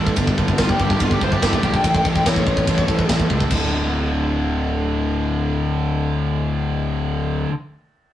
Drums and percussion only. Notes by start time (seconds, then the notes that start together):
0.07 kick
0.16 kick, ride bell
0.27 kick
0.38 kick
0.48 kick
0.58 kick, snare, ride bell
0.69 kick
0.80 kick
0.90 kick
1.00 kick, ride bell
1.11 kick
1.21 kick
1.32 kick
1.42 kick, snare, ride bell
1.53 kick
1.63 kick
1.74 kick
1.84 kick, ride bell
1.95 kick
2.05 kick
2.16 kick
2.26 kick, snare, ride bell
2.36 kick
2.47 kick
2.57 kick
2.67 kick, ride bell
2.78 kick
2.88 kick
2.99 kick
3.09 kick, snare, ride bell
3.20 kick
3.30 kick
3.40 kick
3.50 kick, crash